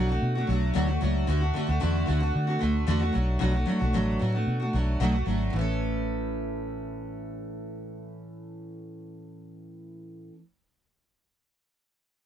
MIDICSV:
0, 0, Header, 1, 3, 480
1, 0, Start_track
1, 0, Key_signature, 3, "major"
1, 0, Tempo, 532387
1, 1150, Time_signature, 4, 2, 24, 8
1, 11045, End_track
2, 0, Start_track
2, 0, Title_t, "Steel-string acoustic guitar"
2, 0, Program_c, 0, 25
2, 78, Note_on_c, 0, 66, 54
2, 96, Note_on_c, 0, 62, 42
2, 105, Note_on_c, 0, 57, 44
2, 306, Note_off_c, 0, 66, 0
2, 317, Note_on_c, 0, 66, 48
2, 324, Note_off_c, 0, 62, 0
2, 328, Note_off_c, 0, 57, 0
2, 335, Note_on_c, 0, 62, 46
2, 346, Note_on_c, 0, 57, 44
2, 425, Note_on_c, 0, 54, 57
2, 430, Note_off_c, 0, 57, 0
2, 434, Note_off_c, 0, 66, 0
2, 437, Note_off_c, 0, 62, 0
2, 441, Note_on_c, 0, 57, 62
2, 448, Note_on_c, 0, 62, 59
2, 456, Note_on_c, 0, 66, 66
2, 661, Note_off_c, 0, 54, 0
2, 663, Note_on_c, 0, 47, 78
2, 666, Note_off_c, 0, 57, 0
2, 671, Note_off_c, 0, 62, 0
2, 672, Note_on_c, 0, 54, 84
2, 675, Note_off_c, 0, 66, 0
2, 677, Note_on_c, 0, 57, 77
2, 682, Note_on_c, 0, 62, 87
2, 685, Note_on_c, 0, 66, 79
2, 775, Note_off_c, 0, 66, 0
2, 786, Note_on_c, 0, 66, 59
2, 787, Note_off_c, 0, 47, 0
2, 791, Note_off_c, 0, 54, 0
2, 791, Note_off_c, 0, 62, 0
2, 794, Note_off_c, 0, 57, 0
2, 802, Note_on_c, 0, 62, 49
2, 816, Note_on_c, 0, 57, 43
2, 907, Note_off_c, 0, 57, 0
2, 908, Note_off_c, 0, 66, 0
2, 909, Note_on_c, 0, 54, 62
2, 916, Note_off_c, 0, 62, 0
2, 917, Note_on_c, 0, 57, 66
2, 928, Note_on_c, 0, 62, 68
2, 936, Note_on_c, 0, 66, 66
2, 1143, Note_off_c, 0, 54, 0
2, 1147, Note_off_c, 0, 57, 0
2, 1147, Note_on_c, 0, 50, 83
2, 1149, Note_off_c, 0, 62, 0
2, 1157, Note_off_c, 0, 66, 0
2, 1158, Note_on_c, 0, 57, 78
2, 1160, Note_on_c, 0, 62, 81
2, 1168, Note_on_c, 0, 66, 86
2, 1258, Note_off_c, 0, 66, 0
2, 1268, Note_off_c, 0, 50, 0
2, 1269, Note_on_c, 0, 66, 46
2, 1271, Note_off_c, 0, 62, 0
2, 1274, Note_off_c, 0, 57, 0
2, 1282, Note_on_c, 0, 62, 45
2, 1296, Note_on_c, 0, 57, 37
2, 1385, Note_on_c, 0, 50, 58
2, 1386, Note_off_c, 0, 57, 0
2, 1389, Note_off_c, 0, 66, 0
2, 1396, Note_off_c, 0, 62, 0
2, 1397, Note_on_c, 0, 57, 59
2, 1408, Note_on_c, 0, 62, 71
2, 1414, Note_on_c, 0, 66, 61
2, 1493, Note_off_c, 0, 66, 0
2, 1504, Note_on_c, 0, 66, 58
2, 1507, Note_off_c, 0, 50, 0
2, 1510, Note_off_c, 0, 62, 0
2, 1513, Note_off_c, 0, 57, 0
2, 1521, Note_on_c, 0, 62, 47
2, 1535, Note_on_c, 0, 57, 48
2, 1618, Note_off_c, 0, 57, 0
2, 1622, Note_off_c, 0, 62, 0
2, 1623, Note_on_c, 0, 50, 67
2, 1627, Note_off_c, 0, 66, 0
2, 1629, Note_on_c, 0, 57, 74
2, 1633, Note_on_c, 0, 62, 80
2, 1641, Note_on_c, 0, 66, 78
2, 1844, Note_off_c, 0, 50, 0
2, 1855, Note_on_c, 0, 50, 54
2, 1858, Note_off_c, 0, 57, 0
2, 1867, Note_off_c, 0, 62, 0
2, 1869, Note_on_c, 0, 57, 59
2, 1875, Note_off_c, 0, 66, 0
2, 1877, Note_on_c, 0, 62, 61
2, 1887, Note_on_c, 0, 66, 67
2, 1975, Note_off_c, 0, 66, 0
2, 1982, Note_off_c, 0, 50, 0
2, 1984, Note_off_c, 0, 62, 0
2, 1986, Note_on_c, 0, 66, 54
2, 1989, Note_off_c, 0, 57, 0
2, 1995, Note_on_c, 0, 62, 48
2, 2011, Note_on_c, 0, 57, 41
2, 2216, Note_off_c, 0, 66, 0
2, 2227, Note_on_c, 0, 66, 48
2, 2229, Note_off_c, 0, 62, 0
2, 2240, Note_off_c, 0, 57, 0
2, 2240, Note_on_c, 0, 62, 42
2, 2254, Note_on_c, 0, 57, 39
2, 2336, Note_on_c, 0, 50, 52
2, 2339, Note_off_c, 0, 57, 0
2, 2347, Note_off_c, 0, 62, 0
2, 2348, Note_off_c, 0, 66, 0
2, 2350, Note_on_c, 0, 57, 62
2, 2358, Note_on_c, 0, 62, 62
2, 2367, Note_on_c, 0, 66, 62
2, 2574, Note_off_c, 0, 50, 0
2, 2582, Note_off_c, 0, 57, 0
2, 2584, Note_on_c, 0, 50, 78
2, 2588, Note_off_c, 0, 62, 0
2, 2593, Note_off_c, 0, 66, 0
2, 2593, Note_on_c, 0, 57, 89
2, 2598, Note_on_c, 0, 62, 83
2, 2604, Note_on_c, 0, 66, 83
2, 2689, Note_off_c, 0, 66, 0
2, 2700, Note_on_c, 0, 66, 55
2, 2704, Note_off_c, 0, 62, 0
2, 2706, Note_off_c, 0, 50, 0
2, 2711, Note_off_c, 0, 57, 0
2, 2715, Note_on_c, 0, 62, 46
2, 2729, Note_on_c, 0, 57, 46
2, 2818, Note_on_c, 0, 54, 57
2, 2819, Note_off_c, 0, 57, 0
2, 2824, Note_off_c, 0, 66, 0
2, 2826, Note_off_c, 0, 62, 0
2, 2830, Note_on_c, 0, 57, 57
2, 2837, Note_on_c, 0, 62, 60
2, 2842, Note_on_c, 0, 66, 59
2, 3052, Note_off_c, 0, 54, 0
2, 3056, Note_on_c, 0, 47, 73
2, 3059, Note_off_c, 0, 57, 0
2, 3062, Note_on_c, 0, 54, 70
2, 3063, Note_off_c, 0, 62, 0
2, 3067, Note_off_c, 0, 66, 0
2, 3069, Note_on_c, 0, 57, 71
2, 3074, Note_on_c, 0, 62, 76
2, 3078, Note_on_c, 0, 66, 83
2, 3174, Note_off_c, 0, 66, 0
2, 3182, Note_off_c, 0, 47, 0
2, 3185, Note_off_c, 0, 54, 0
2, 3185, Note_on_c, 0, 66, 52
2, 3189, Note_off_c, 0, 57, 0
2, 3191, Note_off_c, 0, 62, 0
2, 3200, Note_on_c, 0, 62, 44
2, 3212, Note_on_c, 0, 57, 38
2, 3296, Note_off_c, 0, 57, 0
2, 3296, Note_on_c, 0, 54, 56
2, 3306, Note_off_c, 0, 66, 0
2, 3307, Note_off_c, 0, 62, 0
2, 3307, Note_on_c, 0, 57, 60
2, 3318, Note_on_c, 0, 62, 54
2, 3326, Note_on_c, 0, 66, 66
2, 3406, Note_off_c, 0, 66, 0
2, 3417, Note_on_c, 0, 66, 49
2, 3421, Note_off_c, 0, 62, 0
2, 3422, Note_off_c, 0, 54, 0
2, 3427, Note_off_c, 0, 57, 0
2, 3432, Note_on_c, 0, 62, 49
2, 3443, Note_on_c, 0, 57, 42
2, 3542, Note_off_c, 0, 57, 0
2, 3542, Note_off_c, 0, 66, 0
2, 3544, Note_on_c, 0, 47, 64
2, 3548, Note_off_c, 0, 62, 0
2, 3553, Note_on_c, 0, 54, 73
2, 3553, Note_on_c, 0, 57, 76
2, 3559, Note_on_c, 0, 62, 79
2, 3562, Note_on_c, 0, 66, 72
2, 3770, Note_off_c, 0, 54, 0
2, 3780, Note_off_c, 0, 57, 0
2, 3780, Note_on_c, 0, 54, 51
2, 3786, Note_off_c, 0, 47, 0
2, 3790, Note_off_c, 0, 62, 0
2, 3790, Note_on_c, 0, 57, 57
2, 3795, Note_off_c, 0, 66, 0
2, 3800, Note_on_c, 0, 62, 61
2, 3805, Note_on_c, 0, 66, 57
2, 3886, Note_off_c, 0, 66, 0
2, 3897, Note_on_c, 0, 66, 50
2, 3904, Note_off_c, 0, 54, 0
2, 3905, Note_off_c, 0, 62, 0
2, 3909, Note_off_c, 0, 57, 0
2, 3915, Note_on_c, 0, 62, 43
2, 3927, Note_on_c, 0, 57, 44
2, 4134, Note_off_c, 0, 66, 0
2, 4144, Note_on_c, 0, 66, 44
2, 4151, Note_off_c, 0, 62, 0
2, 4157, Note_off_c, 0, 57, 0
2, 4162, Note_on_c, 0, 62, 38
2, 4170, Note_on_c, 0, 57, 36
2, 4266, Note_off_c, 0, 66, 0
2, 4266, Note_on_c, 0, 54, 55
2, 4267, Note_off_c, 0, 57, 0
2, 4275, Note_off_c, 0, 62, 0
2, 4278, Note_on_c, 0, 57, 54
2, 4286, Note_on_c, 0, 62, 57
2, 4295, Note_on_c, 0, 66, 54
2, 4502, Note_off_c, 0, 54, 0
2, 4506, Note_off_c, 0, 57, 0
2, 4508, Note_on_c, 0, 47, 77
2, 4513, Note_on_c, 0, 54, 79
2, 4514, Note_off_c, 0, 62, 0
2, 4515, Note_off_c, 0, 66, 0
2, 4517, Note_on_c, 0, 57, 80
2, 4525, Note_on_c, 0, 62, 83
2, 4526, Note_on_c, 0, 66, 78
2, 4612, Note_off_c, 0, 66, 0
2, 4623, Note_on_c, 0, 66, 53
2, 4628, Note_off_c, 0, 47, 0
2, 4628, Note_off_c, 0, 62, 0
2, 4630, Note_off_c, 0, 54, 0
2, 4632, Note_off_c, 0, 57, 0
2, 4639, Note_on_c, 0, 62, 42
2, 4653, Note_on_c, 0, 57, 37
2, 4739, Note_off_c, 0, 57, 0
2, 4740, Note_on_c, 0, 54, 51
2, 4745, Note_off_c, 0, 66, 0
2, 4748, Note_off_c, 0, 62, 0
2, 4750, Note_on_c, 0, 57, 54
2, 4759, Note_on_c, 0, 62, 65
2, 4767, Note_on_c, 0, 66, 57
2, 4961, Note_on_c, 0, 45, 65
2, 4983, Note_off_c, 0, 54, 0
2, 4989, Note_off_c, 0, 57, 0
2, 4989, Note_on_c, 0, 52, 61
2, 4993, Note_off_c, 0, 62, 0
2, 4997, Note_off_c, 0, 66, 0
2, 5015, Note_on_c, 0, 57, 70
2, 5038, Note_on_c, 0, 61, 67
2, 5057, Note_on_c, 0, 69, 68
2, 9283, Note_off_c, 0, 45, 0
2, 9310, Note_off_c, 0, 52, 0
2, 9336, Note_off_c, 0, 57, 0
2, 9359, Note_off_c, 0, 61, 0
2, 9378, Note_off_c, 0, 69, 0
2, 11045, End_track
3, 0, Start_track
3, 0, Title_t, "Fingered electric bass"
3, 0, Program_c, 1, 33
3, 0, Note_on_c, 1, 35, 74
3, 155, Note_off_c, 1, 35, 0
3, 200, Note_on_c, 1, 47, 85
3, 393, Note_off_c, 1, 47, 0
3, 439, Note_on_c, 1, 35, 80
3, 632, Note_off_c, 1, 35, 0
3, 679, Note_on_c, 1, 38, 75
3, 872, Note_off_c, 1, 38, 0
3, 923, Note_on_c, 1, 37, 69
3, 1115, Note_off_c, 1, 37, 0
3, 1157, Note_on_c, 1, 38, 94
3, 1351, Note_off_c, 1, 38, 0
3, 1522, Note_on_c, 1, 38, 76
3, 1615, Note_off_c, 1, 38, 0
3, 1653, Note_on_c, 1, 40, 76
3, 1840, Note_off_c, 1, 40, 0
3, 1884, Note_on_c, 1, 38, 75
3, 2075, Note_off_c, 1, 38, 0
3, 2123, Note_on_c, 1, 50, 88
3, 2314, Note_off_c, 1, 50, 0
3, 2367, Note_on_c, 1, 38, 67
3, 2556, Note_off_c, 1, 38, 0
3, 2597, Note_on_c, 1, 40, 68
3, 2790, Note_off_c, 1, 40, 0
3, 2847, Note_on_c, 1, 35, 87
3, 3036, Note_off_c, 1, 35, 0
3, 3083, Note_on_c, 1, 35, 84
3, 3273, Note_off_c, 1, 35, 0
3, 3440, Note_on_c, 1, 35, 80
3, 3533, Note_off_c, 1, 35, 0
3, 3560, Note_on_c, 1, 33, 73
3, 3752, Note_off_c, 1, 33, 0
3, 3804, Note_on_c, 1, 45, 68
3, 3994, Note_off_c, 1, 45, 0
3, 4031, Note_on_c, 1, 47, 68
3, 4226, Note_off_c, 1, 47, 0
3, 4274, Note_on_c, 1, 35, 80
3, 4468, Note_off_c, 1, 35, 0
3, 4506, Note_on_c, 1, 35, 72
3, 4703, Note_off_c, 1, 35, 0
3, 4747, Note_on_c, 1, 32, 62
3, 4944, Note_off_c, 1, 32, 0
3, 4993, Note_on_c, 1, 33, 72
3, 9279, Note_off_c, 1, 33, 0
3, 11045, End_track
0, 0, End_of_file